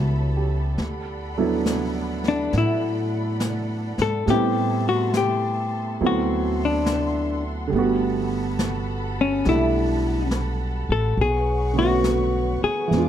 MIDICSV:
0, 0, Header, 1, 7, 480
1, 0, Start_track
1, 0, Tempo, 873362
1, 429, Time_signature, 4, 2, 24, 8
1, 2346, Tempo, 864553
1, 7243, End_track
2, 0, Start_track
2, 0, Title_t, "String section"
2, 0, Program_c, 0, 48
2, 0, Note_on_c, 0, 69, 55
2, 0, Note_on_c, 0, 73, 51
2, 0, Note_on_c, 0, 81, 51
2, 0, Note_on_c, 0, 83, 56
2, 411, Note_off_c, 0, 81, 0
2, 411, Note_off_c, 0, 83, 0
2, 417, Note_off_c, 0, 73, 0
2, 417, Note_on_c, 0, 74, 53
2, 418, Note_on_c, 0, 83, 63
2, 419, Note_on_c, 0, 78, 50
2, 2321, Note_off_c, 0, 74, 0
2, 2322, Note_off_c, 0, 83, 0
2, 2323, Note_off_c, 0, 78, 0
2, 2350, Note_on_c, 0, 81, 52
2, 2352, Note_on_c, 0, 76, 52
2, 2353, Note_on_c, 0, 84, 58
2, 3288, Note_off_c, 0, 69, 0
2, 3300, Note_off_c, 0, 76, 0
2, 3300, Note_off_c, 0, 81, 0
2, 3301, Note_off_c, 0, 84, 0
2, 3306, Note_on_c, 0, 69, 59
2, 3307, Note_on_c, 0, 84, 68
2, 3310, Note_on_c, 0, 78, 50
2, 3313, Note_on_c, 0, 76, 53
2, 4251, Note_off_c, 0, 69, 0
2, 4252, Note_off_c, 0, 84, 0
2, 4254, Note_off_c, 0, 76, 0
2, 4262, Note_on_c, 0, 69, 57
2, 4262, Note_on_c, 0, 81, 56
2, 4266, Note_on_c, 0, 83, 64
2, 6158, Note_off_c, 0, 78, 0
2, 6160, Note_off_c, 0, 69, 0
2, 6160, Note_off_c, 0, 81, 0
2, 6162, Note_off_c, 0, 83, 0
2, 6177, Note_on_c, 0, 73, 54
2, 6178, Note_on_c, 0, 85, 62
2, 6179, Note_on_c, 0, 71, 59
2, 6180, Note_on_c, 0, 78, 56
2, 7134, Note_off_c, 0, 73, 0
2, 7135, Note_off_c, 0, 71, 0
2, 7135, Note_off_c, 0, 85, 0
2, 7136, Note_off_c, 0, 78, 0
2, 7145, Note_on_c, 0, 68, 60
2, 7145, Note_on_c, 0, 76, 48
2, 7148, Note_on_c, 0, 86, 56
2, 7151, Note_on_c, 0, 77, 50
2, 7243, Note_off_c, 0, 68, 0
2, 7243, Note_off_c, 0, 76, 0
2, 7243, Note_off_c, 0, 77, 0
2, 7243, Note_off_c, 0, 86, 0
2, 7243, End_track
3, 0, Start_track
3, 0, Title_t, "Hollow-body jazz guitar"
3, 0, Program_c, 1, 26
3, 0, Note_on_c, 1, 66, 64
3, 266, Note_off_c, 1, 66, 0
3, 1255, Note_on_c, 1, 62, 65
3, 1405, Note_off_c, 1, 62, 0
3, 1416, Note_on_c, 1, 64, 74
3, 2208, Note_on_c, 1, 69, 70
3, 2228, Note_off_c, 1, 64, 0
3, 2360, Note_off_c, 1, 69, 0
3, 2365, Note_on_c, 1, 67, 86
3, 2688, Note_off_c, 1, 67, 0
3, 2690, Note_on_c, 1, 66, 70
3, 2842, Note_off_c, 1, 66, 0
3, 2847, Note_on_c, 1, 67, 64
3, 3331, Note_off_c, 1, 67, 0
3, 3343, Note_on_c, 1, 66, 71
3, 3656, Note_off_c, 1, 66, 0
3, 3669, Note_on_c, 1, 62, 63
3, 4103, Note_off_c, 1, 62, 0
3, 5090, Note_on_c, 1, 61, 65
3, 5238, Note_off_c, 1, 61, 0
3, 5244, Note_on_c, 1, 64, 87
3, 5689, Note_off_c, 1, 64, 0
3, 6039, Note_on_c, 1, 69, 77
3, 6192, Note_off_c, 1, 69, 0
3, 6202, Note_on_c, 1, 68, 94
3, 6518, Note_off_c, 1, 68, 0
3, 6520, Note_on_c, 1, 66, 82
3, 6972, Note_off_c, 1, 66, 0
3, 6994, Note_on_c, 1, 68, 67
3, 7243, Note_off_c, 1, 68, 0
3, 7243, End_track
4, 0, Start_track
4, 0, Title_t, "Grand piano"
4, 0, Program_c, 2, 0
4, 0, Control_c, 2, 64, 127
4, 0, Note_on_c, 2, 55, 40
4, 0, Note_on_c, 2, 57, 36
4, 0, Note_on_c, 2, 59, 40
4, 0, Note_on_c, 2, 61, 38
4, 0, Note_on_c, 2, 64, 49
4, 0, Note_on_c, 2, 66, 33
4, 202, Note_on_c, 2, 67, 34
4, 333, Note_off_c, 2, 66, 0
4, 420, Note_off_c, 2, 55, 0
4, 428, Note_off_c, 2, 57, 0
4, 436, Note_off_c, 2, 59, 0
4, 436, Control_c, 2, 64, 0
4, 443, Note_off_c, 2, 61, 0
4, 451, Note_off_c, 2, 64, 0
4, 534, Note_off_c, 2, 67, 0
4, 539, Control_c, 2, 64, 127
4, 755, Note_on_c, 2, 69, 45
4, 756, Note_on_c, 2, 54, 45
4, 761, Note_on_c, 2, 59, 43
4, 761, Note_on_c, 2, 62, 39
4, 764, Note_on_c, 2, 64, 53
4, 2342, Note_on_c, 2, 55, 50
4, 2345, Note_off_c, 2, 59, 0
4, 2346, Note_on_c, 2, 57, 42
4, 2348, Note_off_c, 2, 69, 0
4, 2349, Note_off_c, 2, 54, 0
4, 2351, Note_off_c, 2, 62, 0
4, 2353, Note_off_c, 2, 64, 0
4, 2354, Control_c, 2, 64, 0
4, 2354, Note_on_c, 2, 59, 48
4, 2364, Note_on_c, 2, 60, 44
4, 2369, Note_on_c, 2, 64, 51
4, 2464, Control_c, 2, 64, 127
4, 3305, Note_off_c, 2, 55, 0
4, 3305, Note_off_c, 2, 57, 0
4, 3308, Note_off_c, 2, 59, 0
4, 3310, Note_off_c, 2, 60, 0
4, 3310, Note_off_c, 2, 64, 0
4, 3311, Note_on_c, 2, 54, 45
4, 3314, Control_c, 2, 64, 0
4, 3314, Note_on_c, 2, 57, 37
4, 3317, Note_on_c, 2, 59, 41
4, 3318, Note_on_c, 2, 60, 39
4, 3318, Note_on_c, 2, 64, 45
4, 3397, Control_c, 2, 64, 127
4, 4237, Note_on_c, 2, 50, 52
4, 4253, Note_on_c, 2, 55, 53
4, 4260, Note_off_c, 2, 57, 0
4, 4263, Note_off_c, 2, 54, 0
4, 4266, Note_off_c, 2, 59, 0
4, 4267, Note_off_c, 2, 60, 0
4, 4267, Note_off_c, 2, 64, 0
4, 4268, Control_c, 2, 64, 0
4, 4269, Note_on_c, 2, 57, 48
4, 4284, Note_on_c, 2, 59, 50
4, 4298, Note_on_c, 2, 66, 61
4, 4366, Control_c, 2, 64, 127
4, 5216, Note_off_c, 2, 55, 0
4, 5224, Note_on_c, 2, 55, 39
4, 5226, Note_off_c, 2, 57, 0
4, 5234, Note_on_c, 2, 57, 37
4, 5243, Note_on_c, 2, 62, 40
4, 6167, Note_off_c, 2, 50, 0
4, 6180, Note_off_c, 2, 55, 0
4, 6185, Note_off_c, 2, 57, 0
4, 6186, Control_c, 2, 64, 0
4, 6189, Note_off_c, 2, 62, 0
4, 6190, Note_off_c, 2, 59, 0
4, 6197, Note_off_c, 2, 66, 0
4, 6269, Control_c, 2, 64, 127
4, 6491, Note_on_c, 2, 50, 43
4, 6497, Note_on_c, 2, 57, 44
4, 6506, Note_on_c, 2, 59, 40
4, 6513, Note_on_c, 2, 61, 40
4, 6517, Note_on_c, 2, 66, 54
4, 7125, Note_on_c, 2, 52, 39
4, 7140, Note_off_c, 2, 50, 0
4, 7142, Note_on_c, 2, 56, 37
4, 7143, Note_off_c, 2, 57, 0
4, 7146, Note_off_c, 2, 59, 0
4, 7151, Note_off_c, 2, 61, 0
4, 7151, Control_c, 2, 64, 0
4, 7153, Note_off_c, 2, 66, 0
4, 7155, Note_on_c, 2, 59, 36
4, 7172, Note_on_c, 2, 62, 34
4, 7184, Note_on_c, 2, 65, 42
4, 7243, Note_off_c, 2, 52, 0
4, 7243, Note_off_c, 2, 56, 0
4, 7243, Note_off_c, 2, 59, 0
4, 7243, Note_off_c, 2, 62, 0
4, 7243, Note_off_c, 2, 65, 0
4, 7243, End_track
5, 0, Start_track
5, 0, Title_t, "Upright bass"
5, 0, Program_c, 3, 32
5, 0, Note_on_c, 3, 37, 58
5, 407, Note_off_c, 3, 37, 0
5, 430, Note_on_c, 3, 38, 55
5, 1367, Note_off_c, 3, 38, 0
5, 1392, Note_on_c, 3, 45, 63
5, 2170, Note_off_c, 3, 45, 0
5, 2190, Note_on_c, 3, 44, 58
5, 2335, Note_off_c, 3, 44, 0
5, 2348, Note_on_c, 3, 45, 64
5, 3286, Note_off_c, 3, 45, 0
5, 3313, Note_on_c, 3, 38, 60
5, 4242, Note_off_c, 3, 38, 0
5, 4266, Note_on_c, 3, 31, 67
5, 5202, Note_off_c, 3, 31, 0
5, 5227, Note_on_c, 3, 35, 70
5, 6003, Note_off_c, 3, 35, 0
5, 6023, Note_on_c, 3, 33, 56
5, 6168, Note_off_c, 3, 33, 0
5, 6180, Note_on_c, 3, 35, 69
5, 6963, Note_off_c, 3, 35, 0
5, 7145, Note_on_c, 3, 40, 63
5, 7243, Note_off_c, 3, 40, 0
5, 7243, End_track
6, 0, Start_track
6, 0, Title_t, "Muted upright bass strokes"
6, 6986, Note_on_c, 9, 29, 29
6, 7041, Note_off_c, 9, 29, 0
6, 7243, End_track
7, 0, Start_track
7, 0, Title_t, "Drums"
7, 428, Note_on_c, 9, 25, 35
7, 428, Note_on_c, 9, 38, 25
7, 483, Note_off_c, 9, 38, 0
7, 911, Note_on_c, 9, 38, 35
7, 911, Note_on_c, 9, 44, 45
7, 966, Note_off_c, 9, 38, 0
7, 966, Note_off_c, 9, 44, 0
7, 1230, Note_on_c, 9, 38, 23
7, 1285, Note_off_c, 9, 38, 0
7, 1389, Note_off_c, 9, 25, 0
7, 1389, Note_on_c, 9, 25, 26
7, 1389, Note_on_c, 9, 38, 25
7, 1444, Note_off_c, 9, 38, 0
7, 1869, Note_on_c, 9, 38, 39
7, 1869, Note_on_c, 9, 44, 51
7, 1924, Note_off_c, 9, 38, 0
7, 1924, Note_off_c, 9, 44, 0
7, 2187, Note_on_c, 9, 38, 24
7, 2242, Note_off_c, 9, 38, 0
7, 2348, Note_off_c, 9, 25, 0
7, 2348, Note_on_c, 9, 25, 35
7, 2348, Note_on_c, 9, 38, 27
7, 2404, Note_off_c, 9, 38, 0
7, 2827, Note_on_c, 9, 38, 38
7, 2827, Note_on_c, 9, 44, 40
7, 2882, Note_off_c, 9, 38, 0
7, 2882, Note_off_c, 9, 44, 0
7, 3306, Note_off_c, 9, 25, 0
7, 3306, Note_on_c, 9, 25, 30
7, 3785, Note_on_c, 9, 38, 38
7, 3785, Note_on_c, 9, 44, 42
7, 3841, Note_off_c, 9, 38, 0
7, 3841, Note_off_c, 9, 44, 0
7, 4262, Note_off_c, 9, 25, 0
7, 4262, Note_on_c, 9, 25, 26
7, 4745, Note_on_c, 9, 38, 38
7, 4745, Note_on_c, 9, 44, 47
7, 4800, Note_off_c, 9, 38, 0
7, 4800, Note_off_c, 9, 44, 0
7, 5223, Note_off_c, 9, 25, 0
7, 5223, Note_on_c, 9, 25, 34
7, 5223, Note_on_c, 9, 38, 26
7, 5279, Note_off_c, 9, 38, 0
7, 5699, Note_on_c, 9, 38, 41
7, 5699, Note_on_c, 9, 44, 43
7, 5755, Note_off_c, 9, 38, 0
7, 5755, Note_off_c, 9, 44, 0
7, 6180, Note_off_c, 9, 25, 0
7, 6180, Note_on_c, 9, 25, 36
7, 6660, Note_on_c, 9, 38, 39
7, 6660, Note_on_c, 9, 44, 49
7, 6715, Note_off_c, 9, 38, 0
7, 6715, Note_off_c, 9, 44, 0
7, 7150, Note_off_c, 9, 25, 0
7, 7150, Note_on_c, 9, 25, 30
7, 7150, Note_on_c, 9, 38, 25
7, 7205, Note_off_c, 9, 38, 0
7, 7243, Note_off_c, 9, 25, 0
7, 7243, End_track
0, 0, End_of_file